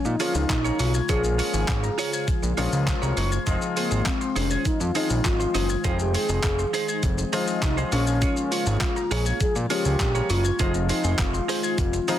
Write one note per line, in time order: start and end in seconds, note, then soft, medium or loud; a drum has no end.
0.00 3.43 C#3 medium
0.00 10.56 G#3 medium
0.00 0.77 A#3 medium
0.00 5.80 F4 medium
0.05 0.16 A#2 loud
0.05 0.15 A#3 medium
0.05 0.22 D#4 loud
0.05 muted clean electric guitar stroke soft
0.05 shaker medium
0.20 0.76 F3 medium
0.20 0.77 G#3 medium
0.20 0.77 A#3 medium
0.20 0.30 C#4 medium
0.20 0.77 C#4 medium
0.20 0.39 F4 loud
0.20 0.36 F4 loud
0.20 0.77 F4 medium
0.20 0.34 G#4 loud
0.20 0.34 C#5 loud
0.20 open hi-hat medium
0.20 shaker medium
0.35 0.46 C#2 medium
0.35 0.81 D#4 loud
0.35 muted clean electric guitar stroke soft
0.35 shaker medium
0.49 0.71 A#1 loud
0.49 muted clean electric guitar stroke soft
0.49 kick loud
0.49 snare medium
0.49 clap loud
0.49 closed hi-hat medium
0.49 shaker medium
0.64 0.78 F4 medium
0.64 0.79 G#4 medium
0.64 0.79 C#5 medium
0.64 0.74 A#5 medium
0.64 shaker medium
0.79 1.01 B1 medium
0.79 0.98 F4 medium
0.79 1.09 F4 loud
0.79 0.94 G#4 medium
0.79 7.88 C5 medium
0.79 0.93 C#5 medium
0.79 0.89 C#6 medium
0.79 open hi-hat medium
0.79 shaker medium
0.94 1.04 G#6 medium
0.94 muted clean electric guitar stroke soft
0.94 shaker medium
1.09 1.41 A#1 loud
1.09 1.84 F3 medium
1.09 1.19 F3 medium
1.09 1.84 G#3 medium
1.09 1.84 A#3 medium
1.09 1.85 C#4 medium
1.09 1.28 F4 medium
1.09 1.85 F4 medium
1.09 1.23 G#4 medium
1.09 2.24 G#4 loud
1.09 1.23 C#5 loud
1.09 kick loud
1.09 closed hi-hat medium
1.09 shaker medium
1.24 1.34 A#3 medium
1.24 muted clean electric guitar stroke soft
1.24 shaker medium
1.38 1.53 F4 medium
1.38 1.53 G#4 medium
1.38 1.52 C#5 medium
1.38 open hi-hat medium
1.38 shaker medium
1.53 1.65 G#1 medium
1.53 1.67 F4 medium
1.53 1.63 G#4 medium
1.53 1.68 G#4 medium
1.53 1.68 C#5 medium
1.53 shaker medium
1.68 1.90 G#1 medium
1.68 1.78 F5 loud
1.68 kick loud
1.68 snare medium
1.68 clap loud
1.68 closed hi-hat medium
1.68 shaker medium
1.83 1.93 A#5 medium
1.83 muted clean electric guitar stroke soft
1.83 shaker medium
1.98 2.13 F4 medium
1.98 2.12 G#4 loud
1.98 2.11 C#5 loud
1.98 open hi-hat medium
1.98 shaker medium
2.13 2.28 F4 soft
2.13 2.28 G#4 medium
2.13 2.28 C#5 medium
2.13 2.23 G#6 medium
2.13 shaker medium
2.28 2.38 F3 medium
2.28 kick loud
2.28 closed hi-hat medium
2.28 shaker medium
2.43 2.54 A#1 medium
2.43 2.53 A#3 medium
2.43 muted clean electric guitar stroke soft
2.43 shaker medium
2.57 2.68 A#1 loud
2.57 3.14 F3 medium
2.57 3.14 G#3 medium
2.57 3.14 A#3 medium
2.57 3.14 C#4 medium
2.57 2.67 C#4 medium
2.57 2.77 F4 medium
2.57 3.14 F4 loud
2.57 2.72 G#4 medium
2.57 2.71 C#5 medium
2.57 open hi-hat medium
2.57 shaker medium
2.72 2.94 C#2 medium
2.72 muted clean electric guitar stroke soft
2.72 shaker medium
2.87 muted clean electric guitar stroke soft
2.87 kick loud
2.87 snare medium
2.87 clap loud
2.87 closed hi-hat medium
2.87 shaker medium
3.02 3.13 C2 medium
3.02 3.16 F4 soft
3.02 3.16 G#4 medium
3.02 3.17 C#5 medium
3.02 3.12 A#5 medium
3.02 shaker medium
3.17 3.39 F#1 medium
3.17 3.36 F4 medium
3.17 3.31 G#4 medium
3.17 3.31 C#5 loud
3.17 3.27 C#6 loud
3.17 open hi-hat medium
3.17 shaker medium
3.32 3.42 G#6 medium
3.32 muted clean electric guitar stroke soft
3.32 shaker medium
3.47 3.58 F1 loud
3.47 7.88 D#3 medium
3.47 4.22 F3 medium
3.47 3.56 F3 medium
3.47 4.22 G#3 medium
3.47 4.22 C4 medium
3.47 3.66 D#4 medium
3.47 4.22 D#4 medium
3.47 4.22 F4 loud
3.47 3.61 G#4 medium
3.47 3.60 C5 medium
3.47 kick loud
3.47 closed hi-hat medium
3.47 shaker medium
3.61 3.71 C4 medium
3.61 muted clean electric guitar stroke soft
3.61 shaker medium
3.76 4.08 A#3 medium
3.76 3.91 D#4 medium
3.76 3.90 G#4 medium
3.76 3.90 C5 medium
3.76 open hi-hat medium
3.76 shaker medium
3.91 4.02 G#1 medium
3.91 4.05 D#4 medium
3.91 4.01 G#4 medium
3.91 4.05 G#4 medium
3.91 4.06 C5 medium
3.91 shaker medium
4.05 4.36 C4 medium
4.05 4.16 F5 medium
4.05 kick loud
4.05 snare medium
4.05 clap loud
4.05 closed hi-hat medium
4.05 shaker medium
4.21 4.31 C6 medium
4.21 muted clean electric guitar stroke soft
4.21 shaker soft
4.36 4.58 F1 medium
4.36 4.64 C#4 loud
4.36 4.51 D#4 medium
4.36 4.50 G#4 medium
4.36 4.49 C5 loud
4.36 open hi-hat medium
4.36 shaker medium
4.51 4.66 D#4 medium
4.51 4.66 G#4 medium
4.51 4.66 C5 medium
4.51 4.60 G#6 medium
4.51 shaker medium
4.65 4.71 F2 soft
4.65 4.75 F3 medium
4.65 4.80 D#4 loud
4.65 kick loud
4.65 closed hi-hat medium
4.65 shaker medium
4.80 4.91 F2 medium
4.80 4.90 C4 medium
4.80 4.97 F4 medium
4.80 muted clean electric guitar stroke medium
4.80 shaker medium
4.95 5.52 F3 medium
4.95 5.52 G#3 medium
4.95 5.52 C4 medium
4.95 5.14 D#4 loud
4.95 5.05 D#4 medium
4.95 5.52 D#4 medium
4.95 5.27 D#4 loud
4.95 5.52 F4 medium
4.95 5.10 G#4 loud
4.95 5.09 C5 loud
4.95 open hi-hat medium
4.95 shaker medium
5.10 5.21 A#1 medium
5.10 shaker medium
5.24 5.46 G#1 loud
5.24 5.84 F4 loud
5.24 muted clean electric guitar stroke soft
5.24 kick loud
5.24 snare medium
5.24 clap loud
5.24 closed hi-hat medium
5.24 shaker medium
5.40 5.49 C6 medium
5.40 muted clean electric guitar stroke medium
5.40 shaker medium
5.54 5.76 F#1 medium
5.54 5.74 D#4 medium
5.54 5.69 G#4 loud
5.54 5.68 C5 loud
5.54 5.64 D#6 medium
5.54 open hi-hat medium
5.54 shaker medium
5.69 5.79 G#6 medium
5.69 muted clean electric guitar stroke soft
5.69 shaker medium
5.84 6.17 F1 loud
5.84 6.60 F3 medium
5.84 5.94 F3 loud
5.84 6.60 G#3 medium
5.84 6.60 C4 medium
5.84 6.03 D#4 loud
5.84 7.90 D#4 medium
5.84 6.60 D#4 medium
5.84 5.91 F4 loud
5.84 5.99 G#4 medium
5.84 5.98 C5 loud
5.84 6.60 G5 medium
5.84 kick loud
5.84 closed hi-hat medium
5.84 shaker medium
5.99 6.09 C4 medium
5.99 6.13 G4 loud
5.99 muted clean electric guitar stroke soft
5.99 shaker medium
6.14 6.29 D#4 medium
6.14 6.99 G#4 loud
6.14 6.28 G#4 medium
6.14 6.28 C5 medium
6.14 open hi-hat medium
6.14 shaker medium
6.29 6.40 F1 loud
6.29 6.43 D#4 medium
6.29 6.39 G#4 medium
6.29 6.43 G#4 medium
6.29 6.43 C5 medium
6.29 shaker medium
6.43 6.65 F1 medium
6.43 6.54 F5 medium
6.43 muted clean electric guitar stroke soft
6.43 kick loud
6.43 snare medium
6.43 clap loud
6.43 closed hi-hat medium
6.43 shaker medium
6.59 6.68 C6 medium
6.59 muted clean electric guitar stroke soft
6.59 shaker medium
6.73 6.88 D#4 medium
6.73 6.88 G#4 loud
6.73 6.87 C5 loud
6.73 open hi-hat medium
6.73 shaker medium
6.88 7.04 D#4 medium
6.88 7.04 G#4 medium
6.88 7.03 C5 medium
6.88 6.98 G#6 medium
6.88 shaker medium
7.03 7.25 F1 loud
7.03 7.13 F3 medium
7.03 kick loud
7.03 closed hi-hat medium
7.03 shaker medium
7.18 7.28 C4 medium
7.18 muted clean electric guitar stroke soft
7.18 shaker medium
7.33 7.89 F3 medium
7.33 7.89 G#3 medium
7.33 7.89 C4 medium
7.33 7.52 D#4 medium
7.33 7.89 D#4 medium
7.33 7.43 D#4 medium
7.33 7.90 F4 loud
7.33 7.47 G#4 loud
7.33 7.47 C5 loud
7.33 open hi-hat medium
7.33 shaker medium
7.48 muted clean electric guitar stroke soft
7.48 shaker medium
7.62 7.84 C2 loud
7.62 7.76 D#4 loud
7.62 muted clean electric guitar stroke soft
7.62 kick loud
7.62 snare medium
7.62 clap loud
7.62 closed hi-hat medium
7.62 shaker medium
7.77 7.91 D#4 medium
7.77 7.91 G#4 medium
7.77 7.92 C5 medium
7.77 7.87 C6 medium
7.77 shaker medium
7.92 8.25 A#1 loud
7.92 10.57 C#3 medium
7.92 8.87 F3 medium
7.92 8.87 G#3 medium
7.92 10.57 A#3 medium
7.92 8.87 A#3 medium
7.92 8.53 C#4 loud
7.92 8.87 C#4 medium
7.92 8.11 F4 medium
7.92 12.19 F4 medium
7.92 8.88 F4 loud
7.92 8.07 G#4 medium
7.92 8.06 C#5 loud
7.92 8.02 C#6 medium
7.92 open hi-hat medium
7.92 shaker medium
8.07 8.17 G#6 medium
8.07 muted clean electric guitar stroke soft
8.07 shaker medium
8.22 8.32 F3 medium
8.22 8.41 F4 medium
8.22 8.36 G#4 medium
8.22 8.35 C#5 medium
8.22 kick loud
8.22 closed hi-hat medium
8.22 shaker medium
8.37 8.46 A#3 medium
8.37 muted clean electric guitar stroke soft
8.37 shaker medium
8.51 8.67 F4 medium
8.51 9.11 F4 loud
8.51 8.66 G#4 medium
8.51 8.65 C#5 medium
8.51 open hi-hat medium
8.51 shaker medium
8.66 8.77 G#1 loud
8.66 8.80 F4 medium
8.66 8.76 G#4 medium
8.66 8.81 G#4 medium
8.66 8.81 C#5 medium
8.66 shaker medium
8.80 8.91 F5 loud
8.80 kick loud
8.80 snare medium
8.80 clap loud
8.80 closed hi-hat medium
8.80 shaker medium
8.96 9.06 A#5 medium
8.96 muted clean electric guitar stroke medium
8.96 shaker medium
9.11 9.33 A#1 loud
9.11 9.26 F4 medium
9.11 9.25 G#4 loud
9.11 9.25 G#4 medium
9.11 9.25 C#5 loud
9.11 open hi-hat medium
9.11 shaker medium
9.26 9.40 F4 medium
9.26 9.40 G#4 medium
9.26 9.40 C#5 medium
9.26 9.36 G#6 loud
9.26 shaker medium
9.40 9.47 A#2 soft
9.40 9.50 F3 medium
9.40 9.54 G#4 loud
9.40 muted clean electric guitar stroke soft
9.40 kick loud
9.40 closed hi-hat medium
9.40 shaker medium
9.56 9.66 A#2 loud
9.56 9.65 A#3 medium
9.56 muted clean electric guitar stroke medium
9.56 shaker medium
9.70 10.27 F3 medium
9.70 10.27 G#3 medium
9.70 10.27 A#3 medium
9.70 9.80 C#4 medium
9.70 10.27 C#4 medium
9.70 9.85 F4 loud
9.70 10.27 F4 medium
9.70 10.31 G4 loud
9.70 9.84 G#4 medium
9.70 9.84 C#5 loud
9.70 open hi-hat medium
9.70 shaker medium
9.85 9.96 C#2 medium
9.85 9.99 F4 medium
9.85 9.99 G#4 medium
9.85 9.99 C#5 medium
9.85 shaker medium
9.99 10.22 A#1 loud
9.99 kick loud
9.99 snare medium
9.99 clap loud
9.99 closed hi-hat medium
9.99 shaker medium
10.15 10.28 F4 medium
10.15 10.29 G#4 medium
10.15 10.29 C#5 medium
10.15 10.25 A#5 medium
10.15 shaker medium
10.29 10.51 F#1 loud
10.29 10.49 F4 medium
10.29 10.89 F4 loud
10.29 10.44 G#4 medium
10.29 10.44 C#5 medium
10.29 10.39 C#6 medium
10.29 open hi-hat medium
10.29 shaker medium
10.45 10.54 G#6 medium
10.45 muted clean electric guitar stroke medium
10.45 shaker medium
10.59 10.92 F1 loud
10.59 12.19 D#3 medium
10.59 11.35 F3 medium
10.59 10.69 F3 loud
10.59 11.35 G#3 medium
10.59 12.19 G#3 medium
10.59 12.19 C4 medium
10.59 11.35 C4 medium
10.59 10.79 D#4 medium
10.59 11.35 D#4 medium
10.59 11.35 F4 medium
10.59 10.74 G#4 loud
10.59 10.73 C5 loud
10.59 kick loud
10.59 closed hi-hat medium
10.59 shaker medium
10.74 10.84 C4 medium
10.74 muted clean electric guitar stroke soft
10.74 shaker medium
10.89 11.04 D#4 medium
10.89 11.17 D#4 medium
10.89 11.03 G#4 medium
10.89 11.03 C5 medium
10.89 open hi-hat medium
10.89 shaker medium
11.04 11.15 F1 loud
11.04 11.18 D#4 medium
11.04 11.14 G#4 medium
11.04 11.18 G#4 medium
11.04 11.18 C5 medium
11.04 shaker medium
11.18 11.40 F1 medium
11.18 12.19 F4 medium
11.18 11.28 F5 loud
11.18 kick loud
11.18 snare medium
11.18 clap loud
11.18 closed hi-hat medium
11.18 shaker medium
11.34 11.43 C6 medium
11.34 muted clean electric guitar stroke soft
11.34 shaker medium
11.48 11.63 D#4 medium
11.48 11.63 G#4 loud
11.48 11.62 C5 loud
11.48 open hi-hat medium
11.48 shaker medium
11.63 11.79 D#4 medium
11.63 11.79 G#4 medium
11.63 11.78 C5 medium
11.63 11.73 G#6 medium
11.63 shaker medium
11.78 12.00 F1 loud
11.78 11.88 F3 medium
11.78 kick loud
11.78 closed hi-hat medium
11.78 shaker medium
11.93 12.03 C4 medium
11.93 muted clean electric guitar stroke medium
11.93 shaker medium
12.08 12.19 F3 medium
12.08 12.19 G#3 medium
12.08 12.19 C4 medium
12.08 12.19 D#4 medium
12.08 12.18 D#4 medium
12.08 12.19 D#4 medium
12.08 12.19 F4 medium
12.08 12.19 G#4 medium
12.08 12.19 C5 medium
12.08 12.19 A#5 medium
12.08 open hi-hat medium
12.08 shaker medium